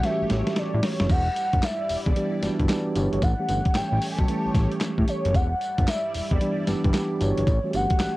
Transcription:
Already playing: E3 G3 A3 C#4 G4 C#5
0.03 E3 G3 A3 C#4 F#4 E5, snare, closed hi-hat
0.11 G4
0.21 A1
0.30 A1, snare, closed hi-hat
0.47 snare, closed hi-hat
0.56 D5, snare, closed hi-hat
0.74 A2
0.83 C#5, snare, open hi-hat
1.00 F#1, snare, closed hi-hat
1.10 E1 G3 E4 D5 F#5, kick, crash, tambourine
1.36 closed hi-hat, tambourine
1.53 G1, kick, closed hi-hat
1.63 E5, snare, clap, closed hi-hat, tambourine
1.89 E1, open hi-hat, tambourine
2.06 E1 D5, kick, closed hi-hat
2.16 E3 G3 B3 D4 G4, closed hi-hat
2.42 G1 E3 G3 B3 D4 F#4, snare, closed hi-hat, tambourine
2.60 G1, kick, closed hi-hat
2.68 E3 G3 B3 D4 G4, snare, clap, closed hi-hat, tambourine
2.95 G1 E3 G3 B3 D4 G4 C#5, closed hi-hat, tambourine
3.13 G1, closed hi-hat
3.22 A1 A3 G4 C#5 F#5, kick, closed hi-hat, tambourine
3.39 E3 G3 A3 C#4 G4
3.49 G1, closed hi-hat, tambourine
3.65 kick, closed hi-hat
3.75 A1 G5, snare, clap, closed hi-hat, tambourine
3.92 A1
4.02 open hi-hat, tambourine
4.11 G#5
4.19 B1 A5, kick, closed hi-hat
4.28 E3 G3 A3 C#4 G4, closed hi-hat
4.46 A1
4.55 A1, kick, snare, closed hi-hat, tambourine
4.72 closed hi-hat
4.81 snare, clap, closed hi-hat, tambourine
4.98 A2, kick
5.08 C#5, closed hi-hat, tambourine
5.25 F#1, closed hi-hat
5.34 E1 G3 E4 D5 F#5, kick, closed hi-hat, tambourine
5.61 closed hi-hat, tambourine
5.78 G1, kick, closed hi-hat
5.88 E5, snare, clap, closed hi-hat, tambourine
6.14 E1, open hi-hat, tambourine
6.31 E1 D5, kick, closed hi-hat
6.40 E3 G3 B3 D4 G4, closed hi-hat
6.67 G1 E3 G3 B3 D4 G4, snare, closed hi-hat, tambourine
6.84 G1, kick, closed hi-hat
6.94 E3 G3 B3 D4 G4, snare, clap, closed hi-hat, tambourine
7.20 G1 E3 G3 B3 D4 F#4 C#5, closed hi-hat, tambourine
7.38 G1, closed hi-hat
7.47 A1 A3 G4 C#5, kick, closed hi-hat, tambourine
7.63 E3 G3 A3 C#4 F#4
7.71 G1 G4 F#5, closed hi-hat, tambourine
7.90 kick, closed hi-hat
8.00 A1, snare, clap, closed hi-hat, tambourine

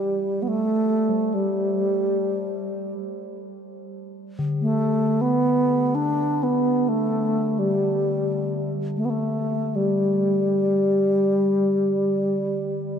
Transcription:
Already playing: G3
0.42 B3
0.48 A3
1.09 G3
1.28 A3
1.34 G3
4.39 D3
4.61 A3
5.21 B3
5.95 D4
6.43 B3
6.89 A3
7.59 G3
8.97 A3
9.05 B3
9.10 A3
9.76 G3

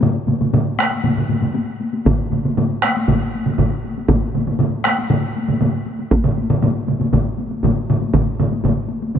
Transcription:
0.01 taiko low-mid, taiko mid, taiko high
0.27 taiko low-mid, taiko mid, taiko high
0.41 taiko low-mid, taiko mid, taiko high
0.53 taiko low-mid, taiko mid, taiko high
0.79 taiko rim, taiko high
0.80 taiko rim
0.91 taiko high
1.04 taiko low-mid, taiko mid, taiko high
1.17 taiko low-mid, taiko mid
1.29 taiko low-mid, taiko mid, taiko high
1.41 taiko low-mid, taiko mid, taiko high
1.54 taiko high
1.80 taiko high
1.93 taiko high
2.05 taiko, taiko low-mid, taiko mid, taiko high
2.32 taiko low-mid, taiko mid, taiko high
2.45 taiko low-mid, taiko mid, taiko high
2.57 taiko low-mid, taiko mid, taiko high
2.82 taiko rim, taiko high
2.97 taiko high
3.08 taiko, taiko low-mid, taiko mid, taiko high
3.35 taiko high
3.46 taiko low-mid, taiko mid, taiko high
3.58 taiko, taiko low-mid, taiko mid, taiko high
3.85 taiko high
3.98 taiko high
4.08 taiko, taiko low-mid, taiko mid, taiko high
4.35 taiko low-mid, taiko mid, taiko high
4.47 taiko low-mid, taiko mid, taiko high
4.59 taiko low-mid, taiko mid, taiko high
4.84 taiko rim, taiko high
4.98 taiko high
5.10 taiko low-mid, taiko mid, taiko high
5.36 taiko high
5.48 taiko low-mid, taiko mid, taiko high
5.61 taiko low-mid, taiko mid, taiko high
5.86 taiko high
5.99 taiko high
6.11 taiko, taiko high
6.24 taiko low-mid, taiko mid
6.38 taiko high
6.50 taiko low-mid, taiko mid, taiko high
6.62 taiko low-mid, taiko mid, taiko high
6.87 taiko low-mid, taiko mid, taiko high
7.00 taiko low-mid, taiko mid, taiko high
7.13 taiko, taiko low-mid, taiko mid, taiko high
7.38 taiko high
7.51 taiko high
7.63 taiko, taiko low-mid, taiko mid, taiko high
7.90 taiko low-mid, taiko mid, taiko high
8.02 taiko high
8.14 taiko, taiko low-mid, taiko mid, taiko high
8.40 taiko low-mid, taiko mid, taiko high
8.52 taiko high
8.64 taiko, taiko low-mid, taiko mid, taiko high
8.89 taiko high
9.02 taiko high
9.15 taiko mid, taiko high

